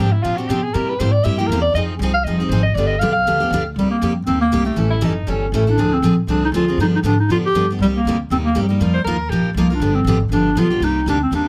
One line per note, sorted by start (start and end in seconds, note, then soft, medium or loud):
0.00 0.23 G#2 loud
0.00 0.13 G4 medium
0.12 0.24 E4 medium
0.22 0.48 A#2 medium
0.22 0.38 C3 medium
0.22 0.38 F3 medium
0.22 0.38 C4 medium
0.22 0.38 D4 medium
0.22 0.38 F4 medium
0.22 0.37 G4 medium
0.36 0.49 C4 soft
0.36 0.49 D4 medium
0.36 0.49 F#4 medium
0.36 0.49 G4 medium
0.48 0.73 B2 medium
0.48 0.59 C3 medium
0.48 0.60 F3 medium
0.48 0.60 C4 medium
0.48 0.60 D4 medium
0.48 0.64 G4 medium
0.48 0.60 G4 loud
0.62 0.75 G#4 medium
0.74 0.92 C3 medium
0.74 0.99 C3 medium
0.74 0.92 G3 medium
0.74 0.92 A#3 medium
0.74 0.93 E4 medium
0.74 0.93 G4 medium
0.74 0.90 A#4 medium
0.88 1.00 B4 medium
0.99 1.24 G#2 medium
0.99 1.10 C3 medium
0.99 1.10 G3 medium
0.99 1.10 A#3 medium
0.99 1.10 E4 medium
0.99 1.10 G4 loud
0.99 1.13 C5 medium
1.11 1.25 D5 medium
1.24 1.48 G2 medium
1.24 1.38 C3 medium
1.24 1.38 G3 medium
1.24 1.38 A#3 medium
1.24 1.38 E4 medium
1.24 1.37 G4 medium
1.24 1.37 E5 loud
1.38 1.50 A#3 medium
1.38 1.50 E4 medium
1.38 1.48 G4 medium
1.38 1.49 G4 medium
1.47 1.73 E2 medium
1.47 1.61 A#4 medium
1.52 1.61 C3 medium
1.52 1.61 G3 medium
1.52 1.61 A#3 medium
1.52 1.61 E4 medium
1.52 1.62 G4 medium
1.61 1.73 D5 loud
1.74 1.98 F2 medium
1.74 1.93 F3 medium
1.74 1.93 C4 medium
1.74 1.93 D#4 medium
1.74 1.94 G#4 medium
1.74 1.83 D#5 medium
1.99 2.24 C2 loud
1.99 2.11 F3 medium
1.99 2.11 C4 medium
1.99 2.11 D#4 medium
2.03 2.12 G#4 medium
2.14 2.25 F5 medium
2.24 2.48 F1 medium
2.24 2.39 F3 medium
2.24 2.39 C4 medium
2.24 2.39 G#4 medium
2.24 2.38 D#5 medium
2.28 2.40 D#4 medium
2.38 2.51 C4 medium
2.38 2.50 D#4 medium
2.38 2.49 G4 soft
2.38 2.50 G#4 medium
2.48 2.74 G#1 medium
2.48 2.61 F3 medium
2.48 2.61 D#4 loud
2.48 2.61 G#4 medium
2.48 2.62 C5 medium
2.52 2.61 C4 medium
2.62 2.76 D#5 loud
2.75 3.00 G1 medium
2.75 2.94 D3 medium
2.75 2.95 G3 medium
2.75 2.95 B3 medium
2.75 2.95 D4 medium
2.75 2.95 G4 medium
2.75 2.86 D5 medium
2.86 3.00 D#5 medium
2.99 3.25 B1 loud
2.99 3.11 D3 medium
2.99 3.11 G3 medium
2.99 3.11 B3 medium
2.99 3.12 F5 medium
3.03 3.12 D4 medium
3.03 3.12 G4 medium
3.12 3.65 F5 loud
3.26 3.50 D#2 medium
3.26 3.40 D3 medium
3.26 3.40 G3 medium
3.26 3.40 B3 medium
3.26 3.40 D4 medium
3.26 3.39 G4 medium
3.40 3.52 B3 soft
3.40 3.51 D4 medium
3.40 3.51 G4 medium
3.50 3.75 D2 medium
3.50 3.62 D3 medium
3.50 3.62 G3 loud
3.50 3.62 B3 medium
3.50 3.62 D4 medium
3.50 3.62 G4 loud
3.76 4.00 C2 medium
3.76 3.95 C3 medium
3.76 3.90 G3 medium
3.76 3.95 G3 medium
3.76 3.95 A#3 medium
3.76 3.95 D#4 medium
3.76 3.95 G4 medium
3.91 4.14 A#3 medium
4.01 4.26 F2 medium
4.01 4.12 C3 medium
4.01 4.12 G3 medium
4.01 4.12 A#3 medium
4.01 4.12 D#4 medium
4.01 4.12 G4 medium
4.26 4.51 D#2 medium
4.26 4.44 C3 medium
4.26 4.45 G3 medium
4.26 4.45 A#3 medium
4.26 4.39 C4 medium
4.26 4.45 D#4 medium
4.26 4.45 G4 medium
4.41 4.64 A#3 medium
4.52 4.76 C2 medium
4.52 4.62 C3 medium
4.52 4.62 G3 medium
4.52 4.62 A#3 medium
4.52 4.62 D#4 medium
4.52 4.63 G4 medium
4.65 4.99 A3 medium
4.65 4.76 A#3 soft
4.65 4.76 D#4 soft
4.65 4.76 G4 medium
4.76 5.01 A1 medium
4.76 4.94 E3 medium
4.76 4.95 G3 medium
4.76 4.95 C#4 medium
4.76 4.95 E4 medium
4.76 4.95 A4 medium
4.90 5.05 E4 loud
5.01 5.26 F#1 medium
5.01 5.12 E3 medium
5.01 5.11 G3 medium
5.01 5.12 C#4 medium
5.01 5.30 D#4 medium
5.01 5.12 E4 medium
5.01 5.12 A4 medium
5.27 5.51 G1 medium
5.27 5.45 E3 medium
5.27 5.45 G3 medium
5.27 5.47 C#4 medium
5.27 5.46 C#4 medium
5.27 5.45 E4 medium
5.27 5.46 A4 medium
5.52 5.77 A1 medium
5.52 5.63 E3 medium
5.52 5.63 G3 medium
5.52 5.71 A3 medium
5.52 5.63 C#4 medium
5.52 5.63 E4 medium
5.52 5.64 A4 loud
5.67 5.79 C#4 soft
5.67 5.95 D4 medium
5.67 5.78 E4 medium
5.67 5.78 A4 medium
5.77 6.02 D2 medium
5.77 5.96 D3 medium
5.77 5.96 F3 medium
5.77 5.96 C4 medium
5.77 5.96 D4 medium
5.77 5.96 G#4 medium
5.93 6.18 C4 medium
6.02 6.27 A#1 medium
6.02 6.13 D3 medium
6.02 6.13 F3 medium
6.02 6.13 C4 medium
6.02 6.14 D4 medium
6.02 6.14 G#4 medium
6.27 6.51 C2 medium
6.27 6.46 D3 medium
6.27 6.46 F3 medium
6.27 6.46 C4 medium
6.27 6.47 D4 medium
6.27 6.42 D4 medium
6.27 6.47 G#4 medium
6.45 6.50 D#4 medium
6.52 6.77 D2 medium
6.52 6.64 D3 medium
6.52 6.64 F3 medium
6.52 6.64 C4 medium
6.52 6.64 D4 medium
6.52 6.78 F4 loud
6.52 6.64 G#4 medium
6.68 6.79 C4 soft
6.68 6.79 D4 medium
6.68 6.79 G#4 medium
6.77 7.02 G2 medium
6.77 6.97 D3 medium
6.77 6.97 F3 medium
6.77 6.97 B3 medium
6.77 6.97 D4 medium
6.77 6.87 D#4 medium
6.77 6.98 G4 medium
6.96 7.00 D#4 medium
7.03 7.28 G#2 medium
7.03 7.13 D3 medium
7.03 7.14 F3 medium
7.03 7.14 B3 medium
7.03 7.14 D4 medium
7.03 7.18 D4 medium
7.03 7.15 G4 medium
7.20 7.29 D#4 medium
7.29 7.53 F2 medium
7.29 7.47 D3 medium
7.29 7.47 F3 medium
7.29 7.47 B3 medium
7.29 7.48 D4 medium
7.29 7.37 F4 medium
7.29 7.48 G4 medium
7.46 7.68 G4 loud
7.54 7.78 G2 medium
7.54 7.64 D3 medium
7.54 7.64 F3 medium
7.54 7.65 B3 medium
7.54 7.65 D4 medium
7.54 7.65 G4 medium
7.70 7.81 B3 soft
7.70 7.81 D4 soft
7.70 7.80 G4 soft
7.79 8.03 C2 medium
7.79 7.99 C3 medium
7.79 7.87 G3 medium
7.79 7.99 G3 medium
7.83 7.99 A#3 medium
7.83 7.99 D#4 medium
7.83 7.99 G4 medium
7.96 8.18 A#3 medium
8.05 8.29 D2 medium
8.05 8.16 C3 medium
8.05 8.16 G3 medium
8.05 8.16 A#3 medium
8.05 8.16 D#4 medium
8.05 8.16 G4 medium
8.30 8.54 D#2 medium
8.30 8.48 C3 medium
8.30 8.48 G3 medium
8.30 8.49 A#3 medium
8.30 8.37 C4 medium
8.30 8.49 D#4 medium
8.30 8.49 G4 medium
8.45 8.60 A#3 medium
8.55 8.79 G2 medium
8.55 8.65 C3 medium
8.55 8.65 G3 medium
8.55 8.65 A#3 medium
8.55 8.65 D#4 medium
8.55 8.65 G4 medium
8.62 8.69 F#3 medium
8.68 9.05 G3 medium
8.68 8.79 A#3 soft
8.68 8.80 D#4 soft
8.68 8.80 G4 medium
8.80 9.04 F2 medium
8.80 8.98 F3 medium
8.80 8.98 A#3 medium
8.80 8.99 D#4 medium
8.80 8.98 F4 medium
8.80 8.99 A#4 medium
8.93 9.03 C5 medium
9.04 9.29 D#2 medium
9.04 9.16 F3 medium
9.04 9.16 A#3 medium
9.04 9.16 D#4 medium
9.04 9.16 F4 medium
9.04 9.31 A#4 medium
9.04 9.16 A#4 loud
9.29 9.54 A#1 medium
9.29 9.49 F3 medium
9.29 9.49 A#3 medium
9.29 9.49 D#4 medium
9.29 9.49 F4 medium
9.29 9.49 G4 medium
9.29 9.49 A#4 medium
9.54 9.79 C2 medium
9.54 9.66 F3 medium
9.54 9.76 A#3 medium
9.54 9.66 A#3 medium
9.54 9.67 D#4 medium
9.54 9.66 F4 medium
9.54 9.67 A#4 medium
9.70 9.82 D#4 soft
9.70 9.81 F4 medium
9.70 9.81 A#4 medium
9.74 9.97 D4 medium
9.80 10.04 G1 medium
9.80 9.99 D3 medium
9.80 9.99 F3 medium
9.80 9.99 B3 medium
9.80 9.99 D4 medium
9.80 9.99 G4 medium
9.95 10.20 C4 medium
10.04 10.28 G#1 medium
10.04 10.16 D3 medium
10.04 10.17 F3 medium
10.04 10.17 B3 medium
10.04 10.17 D4 medium
10.04 10.17 G4 loud
10.29 10.54 G1 medium
10.29 10.49 D3 medium
10.29 10.49 F3 medium
10.29 10.50 B3 medium
10.29 10.50 D4 medium
10.29 10.60 D4 medium
10.33 10.50 G4 medium
10.55 10.79 B1 medium
10.55 10.66 D3 medium
10.55 10.66 F3 medium
10.55 10.66 B3 medium
10.55 10.67 D4 medium
10.55 10.86 F4 medium
10.55 10.67 G4 medium
10.70 10.82 B3 soft
10.70 10.82 D4 soft
10.70 10.81 G4 medium
10.80 11.05 C2 medium
10.80 11.00 C3 medium
10.80 11.00 G3 medium
10.80 11.00 A#3 medium
10.80 11.00 D#4 medium
10.80 11.08 D#4 loud
10.80 11.00 G4 medium
11.06 11.30 D2 medium
11.06 11.17 C3 medium
11.06 11.17 G3 medium
11.06 11.17 A#3 medium
11.06 11.21 D4 medium
11.06 11.18 D#4 medium
11.06 11.17 G4 medium
11.23 11.32 C4 medium
11.31 11.48 D#2 medium
11.31 11.48 C3 medium
11.31 11.48 G3 medium
11.31 11.48 A#3 medium
11.31 11.48 D#4 medium
11.31 11.48 G4 medium
11.35 11.48 D4 medium